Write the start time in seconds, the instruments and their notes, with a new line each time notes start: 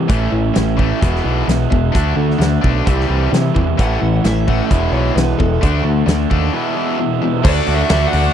0.08 picked electric bass A1, distorted electric guitar A2 E3 A3, overdriven electric guitar C#4 E4, kick, closed hi-hat
0.31 picked electric bass A1, distorted electric guitar A2 E3
0.54 picked electric bass A1, distorted electric guitar A2 E3, snare, closed hi-hat
0.77 distorted electric guitar A2 E3 A3, kick
1.01 picked electric bass E1, distorted electric guitar E2 B2 E3, overdriven electric guitar G#3 B3 E4, kick, closed hi-hat
1.16 snare
1.24 picked electric bass B1, distorted electric guitar E2 B2 E3
1.47 picked electric bass B1, distorted electric guitar E2 B2, snare, closed hi-hat
1.70 picked electric bass E1, distorted electric guitar E2 B2, kick
1.92 picked electric bass D2, distorted electric guitar D3 A3 D4, overdriven electric guitar F#4, kick, closed hi-hat
2.15 picked electric bass D2, distorted electric guitar D3 A3
2.31 snare
2.39 picked electric bass D2, distorted electric guitar D3 A3, snare, closed hi-hat
2.61 picked electric bass B1, distorted electric guitar D3 A3 D4, kick
2.84 picked electric bass C2, distorted electric guitar C3 E3 G3, overdriven electric guitar C4 E4, kick, closed hi-hat
3.00 snare
3.07 picked electric bass C2, distorted electric guitar C3 E3 G3
3.31 distorted electric guitar C3 E3, picked electric bass C3, snare, closed hi-hat
3.54 picked electric bass E2, distorted electric guitar C3 E3, kick
3.77 picked electric bass A1, distorted electric guitar A2 E3 A3, overdriven electric guitar C#4 E4, electric slide guitar F#5, kick, closed hi-hat
4.01 picked electric bass A1, distorted electric guitar A2 E3
4.24 picked electric bass A1, distorted electric guitar A2 E3, electric slide guitar E5, snare, closed hi-hat
4.48 distorted electric guitar A2 E3 A3, electric slide guitar F#5, kick
4.69 picked electric bass E1, distorted electric guitar E2 B2 E3, overdriven electric guitar G#3 B3 E4, electric slide guitar E5, kick, closed hi-hat
4.92 picked electric bass B1, distorted electric guitar E2 B2 E3, electric slide guitar C#5
5.16 picked electric bass B1, distorted electric guitar E2 B2, electric slide guitar B4, snare, closed hi-hat
5.38 picked electric bass E1, distorted electric guitar E2 B2, electric slide guitar A4, kick
5.61 picked electric bass D2, distorted electric guitar D3 A3 D4, overdriven electric guitar F#4, kick, closed hi-hat
5.84 picked electric bass D2, distorted electric guitar D3 A3
6.06 picked electric bass D2, distorted electric guitar D3 A3, snare, closed hi-hat
6.30 picked electric bass D#2, distorted electric guitar D3 A3 D4, kick
6.52 distorted electric guitar E2 B2 E3, overdriven electric guitar G#3 B3
6.57 overdriven electric guitar E4
6.75 distorted electric guitar E2 B2 E3
6.99 distorted electric guitar E2 B2
7.09 tonewheel organ B3
7.13 tonewheel organ C4 D4
7.17 tonewheel organ E4 F4
7.22 distorted electric guitar E2 B2, tonewheel organ G4 A4
7.28 tonewheel organ B4 C5
7.34 tonewheel organ D5 E5
7.41 distorted electric guitar D3 A3, tonewheel organ D4 F#4 A4 D5 F5, lead electric guitar D5, crash
7.45 picked electric bass D2, distorted electric guitar D4 F#4, kick
7.67 picked electric bass D2, distorted electric guitar A3 D4 F#4, open hi-hat
7.74 lead electric guitar E5
7.88 picked electric bass D2, distorted electric guitar D3 A3 D4 F#4, snare, open hi-hat
8.08 distorted electric guitar F#4, lead electric guitar F#5
8.13 picked electric bass D2, distorted electric guitar A3 D4, open hi-hat